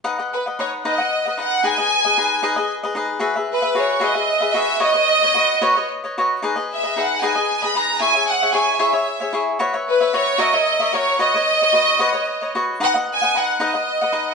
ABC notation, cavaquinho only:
X:1
M:6/8
L:1/16
Q:3/8=75
K:B
V:1 name="Cavaquinho"
[DBdf] [Bdf]2 [Bdf] [DBdf]2 [DBdf] [Bdf]2 [Bdf] [DBdf]2 | [DGBd] [GBd]2 [GBd] [DGBd]2 [DGBd] [GBd]2 [GBd] [DGBd]2 | [FGBe] [GBe]2 [GBe] [FGBe]2 [FGBe] [GBe]2 [GBe] [FGBe]2 | [FBcd] [Bcd]2 [Bcd] [FBcd]2 [FBcd] [Bcd]2 [Bcd] [FBcd]2 |
[DGBd] [GBd]2 [GBd] [DGBd]2 [DGBd] [GBd]2 [GBd] [DGBd]2 | [EGce] [Gce]2 [Gce] [EGce]2 [EGce] [Gce]2 [Gce] [EGce]2 | [FBce] [Bce]2 [Bce] [FBce]2 [FAce] [Ace]2 [Ace] [FAce]2 | [FBcd] [Bcd]2 [Bcd] [FBcd]2 [FBcd] [Bcd]2 [Bcd] [FBcd]2 |
[DBdf] [Bdf]2 [Bdf] [DBdf]2 [DBdf] [Bdf]2 [Bdf] [DBdf]2 |]